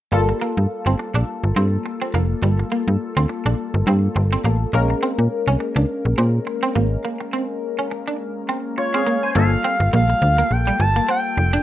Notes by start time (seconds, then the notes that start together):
0.12 G1 G3 A#3 F4 A4
0.29 muted clean electric guitar stroke
0.41 A#3
0.57 G2
0.86 G1 C4
0.99 muted clean electric guitar stroke
1.14 A#1 D4
1.44 G1
1.56 G2 C4
1.86 muted clean electric guitar stroke
2.02 C4
2.14 F1 A#3
2.42 G1 G3
2.59 muted clean electric guitar stroke
2.72 A#3
2.88 G2
3.17 D2 C4
3.29 muted clean electric guitar stroke
3.46 A#1 D4
3.74 G1
3.87 G2 C4
4.16 G1, muted clean electric guitar stroke
4.33 C4
4.44 A1 A#3
4.73 A#1 G#3 A#3 C#4 A#4
4.90 muted clean electric guitar stroke
5.03 C4
5.19 A#2
5.47 C2 C#4
5.60 muted clean electric guitar stroke
5.76 C#2 D4
6.05 A#1
6.18 A#2 C4
6.47 muted clean electric guitar stroke
6.63 C4
6.75 G#1 A#3
7.05 A#3
7.20 muted clean electric guitar stroke
7.33 C4
7.79 C#4
7.91 muted clean electric guitar stroke
8.08 D4
8.49 C4
8.78 F4 C#5, muted clean electric guitar stroke
8.94 C4 G#4 F5
9.07 A#3
9.23 C5 G#5
9.35 G1 G3 A#3 D4 F4 A4 F5
9.64 C4
9.80 G1, muted clean electric guitar stroke
9.93 A#1 A#3 F5
10.10 muted clean electric guitar stroke
10.22 D2
10.38 A#3
10.51 A#1 G5
10.67 G3
10.80 G1 A5, muted clean electric guitar stroke
10.96 A#3
11.09 C4 G5
11.37 F1, muted clean electric guitar stroke
11.53 D4